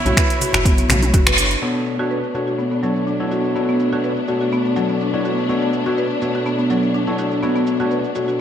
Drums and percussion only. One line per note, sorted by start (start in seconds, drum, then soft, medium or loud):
0.05 closed hi-hat soft
0.05 mid tom medium
0.05 muted conga soft
0.05 low conga medium
0.05 shaker soft
0.17 finger snap medium
0.17 kick loud
0.17 closed hi-hat medium
0.17 shaker soft
0.30 closed hi-hat soft
0.30 shaker soft
0.41 open hi-hat medium
0.41 muted conga medium
0.41 high conga medium
0.41 shaker medium
0.53 finger snap medium
0.53 closed hi-hat soft
0.53 low conga medium
0.53 shaker soft
0.65 kick loud
0.65 closed hi-hat medium
0.65 shaker medium
0.77 closed hi-hat soft
0.77 muted conga soft
0.77 shaker soft
0.89 finger snap medium
0.89 open hi-hat medium
0.89 mid tom medium
0.89 high conga medium
0.89 low conga loud
0.89 shaker medium
1.02 closed hi-hat soft
1.02 mid tom medium
1.02 shaker soft
1.14 kick loud
1.14 closed hi-hat medium
1.14 high conga medium
1.14 shaker soft
1.27 finger snap medium
1.27 closed hi-hat soft
1.27 muted conga medium
1.27 shaker soft
1.38 open hi-hat medium
1.38 shaker medium
1.51 closed hi-hat soft
1.51 shaker soft
1.62 crash medium
1.75 shaker soft
1.86 shaker medium
1.99 shaker soft
2.11 shaker soft
2.23 shaker soft
2.34 shaker medium
2.48 shaker soft
2.59 shaker medium
2.72 shaker soft
2.83 shaker medium
2.96 shaker soft
3.07 shaker soft
3.20 shaker soft
3.31 shaker medium
3.44 shaker soft
3.56 shaker medium
3.69 shaker soft
3.80 shaker medium
3.92 shaker soft
4.04 shaker medium
4.17 shaker soft
4.28 shaker medium
4.41 shaker soft
4.52 shaker medium
4.65 shaker soft
4.76 shaker medium
4.89 shaker soft
5.01 shaker soft
5.14 shaker soft
5.25 shaker medium
5.38 shaker soft
5.49 shaker soft
5.62 shaker soft
5.73 shaker medium
5.86 shaker soft
5.97 shaker medium
6.10 shaker soft
6.22 shaker medium
6.35 shaker soft
6.46 shaker medium
6.59 shaker soft
6.70 shaker medium
6.83 shaker soft
6.94 shaker soft
7.07 shaker soft
7.18 shaker medium
7.32 shaker soft
7.43 shaker medium
7.56 shaker soft
7.67 shaker medium
7.80 shaker soft
7.91 shaker medium
8.04 shaker soft
8.15 shaker loud
8.28 shaker soft